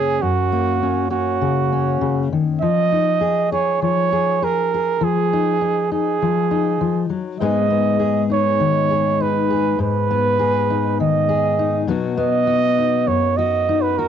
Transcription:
Already playing: steel-string acoustic guitar F#2 C#3 F#3 A#3 C#4 A#4, trumpet G#4
0.22 steel-string acoustic guitar F#2, trumpet F#4
0.52 steel-string acoustic guitar A#3
0.83 steel-string acoustic guitar C#4
1.11 steel-string acoustic guitar C#4, trumpet F#4
1.41 steel-string acoustic guitar C#3
1.73 steel-string acoustic guitar C#4
2.01 steel-string acoustic guitar C#3
2.33 steel-string acoustic guitar D#3
2.62 steel-string acoustic guitar F3, trumpet D#5
2.92 steel-string acoustic guitar D#4
3.21 steel-string acoustic guitar G#4
3.52 steel-string acoustic guitar G#4, trumpet C#5
3.82 steel-string acoustic guitar F3, trumpet C#5
4.13 steel-string acoustic guitar G#4
4.42 steel-string acoustic guitar G#4, trumpet A#4
4.74 steel-string acoustic guitar G#4
5.01 steel-string acoustic guitar F3, trumpet G#4
5.33 steel-string acoustic guitar D#4
5.61 steel-string acoustic guitar D#4
5.92 steel-string acoustic guitar D#4, trumpet G#4
6.22 steel-string acoustic guitar F3
6.51 steel-string acoustic guitar D#4
6.81 steel-string acoustic guitar F3
7.10 steel-string acoustic guitar F#3
7.40 steel-string acoustic guitar G#2 G#3 B3 D#4 G#4, trumpet D#5
7.70 steel-string acoustic guitar B3
7.99 steel-string acoustic guitar G#4
8.30 steel-string acoustic guitar D#4, trumpet C#5
8.60 steel-string acoustic guitar D#3
8.90 steel-string acoustic guitar G#4
9.20 steel-string acoustic guitar D#4, trumpet B4
9.50 steel-string acoustic guitar G#4
9.79 steel-string acoustic guitar G#2, trumpet B4
10.11 steel-string acoustic guitar B3
10.39 steel-string acoustic guitar G#4
10.70 steel-string acoustic guitar D#4
11.00 steel-string acoustic guitar D#3, trumpet D#5
11.29 steel-string acoustic guitar G#4
11.59 steel-string acoustic guitar D#4
11.87 steel-string acoustic guitar B2 F#3 B3 D#4 F#4
12.17 steel-string acoustic guitar B3, trumpet D#5
12.47 steel-string acoustic guitar F#4
12.78 steel-string acoustic guitar D#4
13.07 steel-string acoustic guitar F#2, trumpet C#5
13.37 steel-string acoustic guitar F#4, trumpet D#5
13.69 steel-string acoustic guitar D#4
13.82 trumpet B4
13.98 steel-string acoustic guitar F#4, trumpet A#4

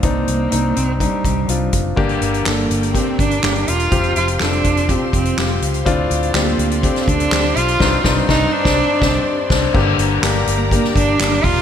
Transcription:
0.03 fingered electric bass C2, grand piano G2 C4 D4 D#4, cello A#3, kick, closed hi-hat
0.28 fingered electric bass C2, closed hi-hat
0.51 fingered electric bass C2, grand piano C4 D4 D#4, closed hi-hat
0.76 fingered electric bass C2, cello C4, closed hi-hat
0.99 cello G3, grand piano C4 D4 D#4, kick, closed hi-hat
1.25 fingered electric bass C2, kick, closed hi-hat
1.48 fingered electric bass C2, grand piano C4 D4 F4, closed hi-hat
1.73 fingered electric bass F#1, kick, closed hi-hat
1.96 fingered electric bass G1, grand piano G2 D3 A#3 D4 G4, string section A#3 G4 D5 G5, kick, crash
2.09 closed hi-hat
2.21 fingered electric bass G1, closed hi-hat
2.34 closed hi-hat
2.45 fingered electric bass G1, grand piano A#3 D4 A4, cello A#3, snare, clap
2.70 fingered electric bass G1, closed hi-hat
2.83 closed hi-hat
2.94 grand piano A#3 D4 G4, cello C4, kick, closed hi-hat
3.19 fingered electric bass G1, cello D4, kick, closed hi-hat
3.31 closed hi-hat
3.43 fingered electric bass G1, grand piano A#3 D4 G4, snare, clap
3.56 closed hi-hat
3.68 fingered electric bass E1, cello F4, closed hi-hat
3.79 closed hi-hat
3.91 fingered electric bass F1, grand piano C3 C4 F4 G4, string section C5 F5 C6, kick, closed hi-hat
4.03 closed hi-hat
4.16 fingered electric bass F1, cello F4, closed hi-hat
4.28 closed hi-hat
4.40 fingered electric bass F1, grand piano C4 F4 A4, cello D4, snare, clap
4.53 closed hi-hat
4.64 fingered electric bass F1, kick, closed hi-hat
4.77 closed hi-hat
4.89 grand piano C4 F4 G4, cello C4, kick, closed hi-hat
5.13 fingered electric bass F1, cello C4, kick, closed hi-hat
5.25 closed hi-hat
5.37 fingered electric bass F1, grand piano C4 F4 G4, snare, clap
5.62 fingered electric bass C#2, closed hi-hat
5.74 closed hi-hat
5.85 fingered electric bass D2, grand piano A2 C4 D4 F4, string section A4 D5 C6, kick, closed hi-hat
6.10 fingered electric bass D2, closed hi-hat
6.23 closed hi-hat
6.34 fingered electric bass D2, cello A#3, grand piano C4 D4 G4, snare, clap
6.58 fingered electric bass D2, closed hi-hat
6.71 closed hi-hat
6.82 grand piano C4 D4 G4, cello C4, kick, closed hi-hat
6.96 snare, closed hi-hat
7.08 fingered electric bass D2, cello D4, kick, closed hi-hat
7.20 closed hi-hat
7.31 fingered electric bass D2, grand piano C4 D4 G4, snare, clap
7.56 fingered electric bass B1, cello F4, closed hi-hat
7.68 closed hi-hat
7.80 fingered electric bass C2, grand piano G2 C4 D4 D#4, string section G4 C5 D5, kick, snare, crash
8.04 fingered electric bass C2, grand piano G2 C4 D4 D#4, kick, snare
8.28 fingered electric bass C2, grand piano C4 D4 D#4, cello D#4, kick, snare
8.53 cello D4
8.64 fingered electric bass C2, grand piano C4 D4, kick, snare
9.01 fingered electric bass C2, grand piano C4 D4, kick, snare
9.49 fingered electric bass C2, grand piano C4 D4, kick, snare, crash
9.73 fingered electric bass G1, grand piano G2 D3 A#3 D4 G4, string section G4 A#4 D5 A#5, kick, crash
9.98 fingered electric bass G1, closed hi-hat
10.21 fingered electric bass G1, grand piano A#3 D4 G4, snare, clap, closed hi-hat
10.47 fingered electric bass G1, closed hi-hat
10.57 cello A#3
10.71 grand piano A#3 D4 G4, cello A#3, kick, closed hi-hat
10.84 snare
10.96 fingered electric bass G1, cello D4, kick, closed hi-hat
11.19 fingered electric bass G1, grand piano A#3 D4 G4, snare, clap, closed hi-hat
11.44 fingered electric bass E1, cello F4, kick, open hi-hat

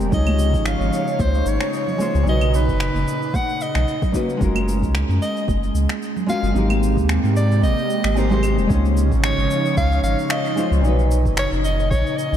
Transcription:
Already playing: analog synth pad C3 G4, nylon-string guitar A#4
0.00 sub bass D#1, cabasa
0.09 sub bass C#2, analog synth pad F3 D#4 C#5, nylon-string guitar G#3 C#4 D#4, kick, low conga, cabasa
0.13 analog synth pad C#3, nylon-string guitar F4 C#5, soprano saxophone D#5
0.27 high conga, cabasa, claves
0.39 cabasa
0.54 sub bass G#1, kick, cabasa
0.66 soprano saxophone F5, finger snap, cabasa
0.80 sub bass G#1, high conga, cabasa
0.93 cabasa
1.08 cabasa
1.19 sub bass C#2, soprano saxophone C5, kick, high conga, cabasa
1.34 cabasa
1.46 sub bass G#1, soprano saxophone C#5, cabasa
1.61 finger snap, high conga, cabasa
1.73 cabasa
1.87 low conga, cabasa
1.98 nylon-string guitar G#3 C#4 D#4 F4 C5, high conga, cabasa
2.15 sub bass C#2, cabasa
2.23 sub bass B1, nylon-string guitar A#2 D#4, low conga
2.27 nylon-string guitar F#4 B4, soprano saxophone D#5, cabasa
2.41 high conga, cabasa, claves
2.54 soprano saxophone B4, cabasa
2.68 sub bass F#1, kick, cabasa
2.80 finger snap, cabasa
2.95 sub bass F#1, high conga, cabasa
3.08 cabasa
3.22 cabasa
3.34 soprano saxophone F#5, kick, high conga, cabasa
3.49 cabasa
3.61 soprano saxophone D#5, cabasa
3.75 sub bass B1, finger snap, high conga, cabasa
3.88 cabasa
4.02 kick, low conga, cabasa
4.12 nylon-string guitar A#3 C#4 D#4 F#4 B4, kick, high conga, cabasa
4.29 cabasa
4.37 nylon-string guitar G#3 C#4 F4, low conga
4.41 sub bass F#1, analog synth pad G#3, nylon-string guitar F#4 A#4, kick, cabasa
4.55 high conga, cabasa, claves
4.68 cabasa
4.82 sub bass C#2, kick, cabasa
4.95 finger snap, cabasa
5.09 sub bass F#2, high conga, cabasa
5.22 soprano saxophone D#5, cabasa
5.37 cabasa
5.48 sub bass F#1, kick, high conga, cabasa
5.63 cabasa
5.74 sub bass C#2, cabasa
5.89 finger snap, high conga, cabasa
6.02 cabasa
6.17 low conga, cabasa
6.26 nylon-string guitar G#3 C#4 F4 F#4 A#4, soprano saxophone F5, high conga, cabasa
6.43 sub bass F#1, cabasa
6.52 sub bass G#1, analog synth pad C3 A#3 G4, nylon-string guitar G#3 C4 D#4, low conga
6.56 nylon-string guitar G4 A#4, cabasa
6.70 high conga, cabasa, claves
6.83 cabasa
6.97 sub bass D#2, kick, cabasa
7.09 finger snap, cabasa
7.23 sub bass G#2, high conga, cabasa
7.36 soprano saxophone D5, cabasa
7.52 cabasa
7.62 sub bass G#1, soprano saxophone D#5, high conga, cabasa
7.78 cabasa
7.90 cabasa
8.04 sub bass G#1, finger snap, high conga, cabasa
8.15 nylon-string guitar G#3 C4 D#4 G4 A#4, soprano saxophone C5, cabasa
8.30 nylon-string guitar G#3 C4 D#4 G4 C5, low conga, cabasa
8.42 high conga, cabasa, claves
8.57 sub bass D#1, cabasa
8.67 sub bass C#2, analog synth pad F3 D#4 C#5, nylon-string guitar G#3 C#4 D#4, kick, cabasa
8.71 analog synth pad C#3, nylon-string guitar F4 C#5
8.85 cabasa
8.97 cabasa
9.11 sub bass G#1, kick, cabasa
9.24 soprano saxophone C#5, finger snap, cabasa
9.38 sub bass G#1, cabasa
9.51 cabasa
9.65 cabasa
9.77 sub bass C#2, soprano saxophone F5, kick, cabasa
9.92 cabasa
10.03 sub bass G#1, soprano saxophone F5, cabasa
10.19 cabasa
10.30 soprano saxophone D#5, finger snap, cabasa
10.46 cabasa
10.56 nylon-string guitar G#3 C#4 D#4 F4 C5, cabasa
10.71 sub bass C#2, cabasa
10.81 sub bass B1, nylon-string guitar A#2 C#4 D#4, analog synth pad C#3 D#4, cabasa
10.86 nylon-string guitar F#4 B4
10.99 cabasa
11.11 cabasa
11.25 sub bass F#1, kick, cabasa
11.37 soprano saxophone C#5, finger snap, cabasa
11.52 sub bass F#1, cabasa
11.65 soprano saxophone D#5, cabasa
11.80 cabasa
11.90 sub bass B1, soprano saxophone C#5, kick, cabasa
12.07 cabasa
12.17 soprano saxophone D#5, cabasa
12.32 sub bass B1, cabasa

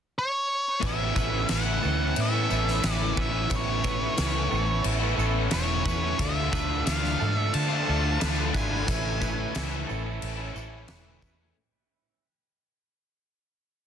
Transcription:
0.19 lead electric guitar C#5
0.80 fingered electric bass A1, overdriven electric guitar A2 E3 A3 C#4 E4, clean electric guitar B3, kick, tambourine, crash
0.87 lead electric guitar E5
1.15 fingered electric bass A1, overdriven electric guitar A2 E3 A3 C#4 E4, clean electric guitar B3 B4, kick, tambourine
1.32 clean electric guitar B3 C#4 E4
1.48 fingered electric bass A1, overdriven electric guitar A2 E3 A3 C#4 E4, clean electric guitar B3, snare, tambourine, crash
1.52 lead electric guitar F#5
1.64 overdriven electric guitar A3 C#4 E4, clean electric guitar B3
1.81 fingered electric bass D2, overdriven electric guitar A2 E3 A3, clean electric guitar E3 B3 C#4 E4 A4, muted overdriven electric guitar stroke, tambourine
1.85 overdriven electric guitar C#4 E4
1.99 clean electric guitar B3 C#4 E4
2.15 overdriven electric guitar A2 E3 A3 C#4 E4, fingered electric bass A2, crash
2.22 lead electric guitar E5
2.32 overdriven electric guitar A3 C#4 E4, clean electric guitar B3
2.48 fingered electric bass A1, overdriven electric guitar A2 E3 A3 C#4 E4, clean electric guitar B3 A4, tambourine
2.68 snare
2.82 fingered electric bass A1, overdriven electric guitar A2 E3 A3 C#4 E4, clean electric guitar B3 B4, snare, tambourine, crash
2.93 lead electric guitar D5
2.98 overdriven electric guitar A3 C#4 E4
3.16 fingered electric bass A1, overdriven electric guitar A2 E3 A3 C#4 E4, clean electric guitar B3 B4, kick
3.21 lead electric guitar E5
3.32 overdriven electric guitar A3 C#4 E4, clean electric guitar B3
3.49 fingered electric bass A1, overdriven electric guitar A2 E3 A3 C#4 E4, clean electric guitar B3, kick, tambourine, crash
3.56 lead electric guitar C#5
3.84 overdriven electric guitar A2 E3 A3 C#4 E4, clean electric guitar B3 B4, kick, tambourine
3.99 clean electric guitar B3 C#4 E4
4.16 fingered electric bass C#2, overdriven electric guitar A2 E3 A3 C#4 E4, clean electric guitar B3, snare, tambourine, crash
4.33 overdriven electric guitar A3 C#4 E4, clean electric guitar B3
4.50 fingered electric bass A1, overdriven electric guitar A2 E3 A3, clean electric guitar E3 B3 C#4 E4 A4, muted overdriven electric guitar stroke, tambourine
4.54 overdriven electric guitar C#4 E4
4.66 clean electric guitar B3 C#4 E4
4.84 fingered electric bass A1, overdriven electric guitar A2 E3 A3 C#4 E4, crash
5.00 overdriven electric guitar A3 C#4 E4, clean electric guitar B3
5.17 fingered electric bass A1, overdriven electric guitar A2 E3 A3 C#4 E4, clean electric guitar B3 A4, tambourine
5.51 fingered electric bass E1, overdriven electric guitar A2 E3 A3 C#4 E4, clean electric guitar B3 B4, lead electric guitar C#5, snare, tambourine, crash
5.69 overdriven electric guitar A3 C#4 E4
5.85 fingered electric bass E2, overdriven electric guitar A2 E3 A3 C#4 E4, clean electric guitar B3 B4, kick, tambourine
6.01 overdriven electric guitar A3 C#4 E4, clean electric guitar B3
6.17 fingered electric bass D2, overdriven electric guitar D3 A3 D4, clean electric guitar F3, lead electric guitar E5, kick, tambourine, crash
6.22 overdriven electric guitar F4
6.51 fingered electric bass D2, overdriven electric guitar D3 A3, clean electric guitar F3 B4, kick
6.55 overdriven electric guitar D4 F4, tambourine
6.69 clean electric guitar A3 D4
6.85 fingered electric bass D2, overdriven electric guitar D3 A3 D4, clean electric guitar F3, lead electric guitar F5, snare, tambourine, crash
6.90 overdriven electric guitar F4
7.02 clean electric guitar A3 D4, overdriven electric guitar F4, snare
7.06 overdriven electric guitar A3 D4
7.18 fingered electric bass G#2, overdriven electric guitar D3 A3 D4, clean electric guitar F3 A3 D4 A4, tambourine
7.22 overdriven electric guitar F4, muted overdriven electric guitar stroke
7.35 clean electric guitar A3 D4, lead electric guitar E5
7.53 overdriven electric guitar D3 A3 D4 F4, fingered electric bass D3, lead electric guitar A5, crash
7.68 overdriven electric guitar A3 D4 F4
7.85 fingered electric bass D2, overdriven electric guitar D3 A3, clean electric guitar F3 A4
7.89 overdriven electric guitar D4 F4
8.19 fingered electric bass D2, overdriven electric guitar D3 A3 D4 F4, clean electric guitar F3 A3 B4, snare, tambourine, crash
8.37 overdriven electric guitar A3 D4 F4
8.52 fingered electric bass G#1, overdriven electric guitar D3 A3 D4, clean electric guitar F3 E4 B4, lead electric guitar G#5, kick, tambourine
8.57 overdriven electric guitar F4
8.69 overdriven electric guitar A3 D4 F4, clean electric guitar E4
8.87 fingered electric bass A1, overdriven electric guitar A2 E3 A3 C#4 E4, clean electric guitar C#4, kick, tambourine, crash
9.20 overdriven electric guitar A2 E3 A3 C#4 E4, clean electric guitar B4, kick, tambourine
9.37 clean electric guitar C#4 E4
9.54 fingered electric bass C#2, overdriven electric guitar A2 E3 A3 C#4 E4, snare, tambourine, crash
9.70 overdriven electric guitar A3 C#4 E4
9.87 fingered electric bass A1, overdriven electric guitar A2 E3 A3 C#4 E4, clean electric guitar E3 C#4 E4 A4, muted overdriven electric guitar stroke, tambourine
10.04 clean electric guitar C#4 E4
10.22 fingered electric bass A1, overdriven electric guitar A2 E3 A3 C#4 E4, crash
10.37 overdriven electric guitar A3 C#4 E4
10.54 fingered electric bass A1, overdriven electric guitar A2 E3 A3 C#4, clean electric guitar A4, tambourine
10.58 overdriven electric guitar E4
10.88 overdriven electric guitar A2 E3 A3 C#4 E4, clean electric guitar B4, snare, tambourine, crash
11.05 overdriven electric guitar A3 C#4 E4
11.21 fingered electric bass E2, overdriven electric guitar A2 E3 A3 C#4 E4, clean electric guitar G#3 B4, kick, tambourine
11.39 clean electric guitar G#3, overdriven electric guitar A3 C#4 E4

